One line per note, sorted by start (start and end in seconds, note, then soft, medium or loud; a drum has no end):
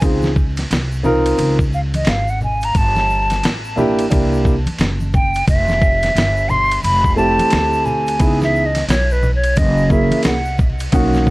0.01 0.67 C#2 medium
0.01 0.28 C4 medium
0.01 0.28 D#4 medium
0.01 0.29 F4 medium
0.01 0.29 G#4 medium
0.01 kick loud
0.01 ride medium
0.01 shaker medium
0.22 snare soft
0.22 high conga medium
0.22 shaker soft
0.36 kick medium
0.36 shaker soft
0.56 snare soft
0.56 ride medium
0.56 shaker soft
0.70 1.35 C2 medium
0.70 snare loud
0.70 hi-hat pedal soft
0.70 ride medium
0.70 shaker medium
0.92 shaker medium
1.03 1.54 C4 medium
1.03 1.55 D#4 medium
1.03 1.55 F4 medium
1.03 1.56 A#4 medium
1.03 high conga medium
1.03 low conga medium
1.03 shaker soft
1.25 ride medium
1.25 shaker soft
1.38 2.03 C#2 loud
1.38 ride medium
1.38 high conga soft
1.38 shaker medium
1.59 kick medium
1.59 shaker soft
1.73 1.80 F5 medium
1.73 shaker soft
1.94 2.10 D#5 medium
1.94 ride medium
1.94 high conga medium
1.94 shaker soft
2.05 2.72 G#1 medium
2.05 2.31 F5 medium
2.05 snare loud
2.05 hi-hat pedal medium
2.05 ride medium
2.05 shaker medium
2.28 2.42 F#5 medium
2.28 shaker soft
2.41 2.66 G#5 loud
2.41 low conga medium
2.41 shaker soft
2.61 2.79 A#5 loud
2.61 ride medium
2.61 shaker medium
2.75 3.40 G1 loud
2.75 3.44 A5 loud
2.75 kick loud
2.75 ride medium
2.75 shaker medium
2.95 snare soft
2.95 high conga medium
2.95 shaker soft
3.10 shaker soft
3.30 snare soft
3.30 ride medium
3.30 shaker soft
3.43 4.08 A1 medium
3.43 snare loud
3.43 hi-hat pedal soft
3.43 ride medium
3.43 shaker medium
3.65 shaker medium
3.76 4.03 A#3 medium
3.76 4.03 D4 medium
3.76 4.03 E4 medium
3.76 4.04 G4 medium
3.76 high conga soft
3.76 low conga medium
3.76 shaker soft
3.99 ride medium
3.99 shaker soft
4.10 4.64 C2 loud
4.10 4.53 A#3 medium
4.10 4.53 D4 medium
4.10 4.54 E4 medium
4.10 4.54 G4 medium
4.10 kick loud
4.10 ride medium
4.10 high conga soft
4.10 shaker medium
4.33 shaker soft
4.45 kick medium
4.45 shaker soft
4.66 muted upright bass stroke soft
4.66 ride medium
4.66 high conga medium
4.66 shaker soft
4.78 5.44 F#1 medium
4.78 snare loud
4.78 hi-hat pedal medium
4.78 ride medium
4.78 shaker medium
5.00 high conga medium
5.00 shaker soft
5.14 5.46 G5 medium
5.14 kick medium
5.14 low conga medium
5.14 shaker soft
5.34 ride medium
5.34 shaker medium
5.47 6.12 F1 medium
5.47 6.51 E5 loud
5.47 kick loud
5.47 ride medium
5.47 shaker medium
5.68 snare soft
5.68 high conga medium
5.68 shaker soft
5.82 kick loud
5.82 shaker soft
6.02 snare soft
6.02 ride medium
6.02 shaker soft
6.15 6.80 G1 medium
6.15 snare loud
6.15 hi-hat pedal medium
6.15 ride medium
6.15 shaker medium
6.37 shaker soft
6.49 6.83 C6 loud
6.49 high conga soft
6.49 low conga medium
6.49 shaker soft
6.71 ride medium
6.71 shaker soft
6.83 7.36 F1 medium
6.83 7.15 B5 loud
6.83 ride medium
6.83 high conga soft
6.83 shaker medium
7.04 kick medium
7.04 shaker soft
7.16 8.14 A3 medium
7.16 8.14 C4 medium
7.16 8.15 E4 medium
7.16 8.15 G4 medium
7.16 7.87 A5 loud
7.16 shaker medium
7.39 muted upright bass stroke soft
7.39 ride medium
7.39 high conga medium
7.39 shaker soft
7.50 8.17 D2 medium
7.50 snare loud
7.50 hi-hat pedal soft
7.50 ride medium
7.50 shaker medium
7.73 shaker soft
7.85 8.42 G#5 loud
7.85 low conga medium
7.85 shaker soft
8.07 ride medium
8.07 shaker medium
8.19 8.85 C#2 loud
8.19 8.62 B3 medium
8.19 8.62 D#4 medium
8.19 8.63 E4 medium
8.19 8.63 G#4 medium
8.19 kick loud
8.19 ride medium
8.19 shaker medium
8.41 8.67 E5 loud
8.41 snare soft
8.41 high conga medium
8.41 shaker soft
8.55 shaker soft
8.66 8.88 D#5 medium
8.75 snare soft
8.75 ride medium
8.75 shaker soft
8.88 9.53 B1 medium
8.88 9.14 C#5 loud
8.88 snare loud
8.88 hi-hat pedal medium
8.88 ride medium
8.88 shaker medium
9.10 9.34 B4 medium
9.10 shaker soft
9.23 high conga soft
9.23 low conga medium
9.23 shaker soft
9.35 9.59 C#5 medium
9.44 ride medium
9.44 shaker soft
9.56 10.09 F#1 loud
9.56 9.93 D#5 loud
9.56 kick loud
9.56 ride medium
9.56 high conga soft
9.56 shaker medium
9.77 shaker soft
9.89 10.32 A#3 medium
9.89 10.33 C#4 medium
9.89 10.33 E4 medium
9.89 10.34 G#4 medium
9.89 10.25 E5 medium
9.89 kick medium
9.89 shaker soft
10.11 muted upright bass stroke soft
10.11 ride medium
10.11 high conga medium
10.11 shaker soft
10.23 10.89 C2 medium
10.23 10.57 F#5 medium
10.23 snare loud
10.23 hi-hat pedal soft
10.23 ride medium
10.23 shaker medium
10.45 shaker soft
10.58 kick medium
10.58 low conga medium
10.58 shaker soft
10.79 ride medium
10.79 shaker medium
10.92 11.30 B1 loud
10.92 11.30 A#3 medium
10.92 11.30 C#4 medium
10.92 11.30 D#4 medium
10.92 11.30 F#4 medium
10.92 kick loud
10.92 ride medium
10.92 shaker medium
11.13 snare soft
11.13 high conga medium
11.13 shaker soft
11.27 kick medium